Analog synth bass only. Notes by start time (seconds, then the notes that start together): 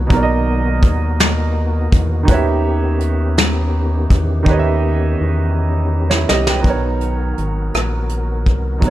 0.11 B1
0.84 D#2
1.93 E2
2.29 D#2
4.11 E2
4.47 D#2
5.21 E2
6.30 C2
6.66 B1
7.38 G#1
7.74 A#1
8.48 C2
8.83 B1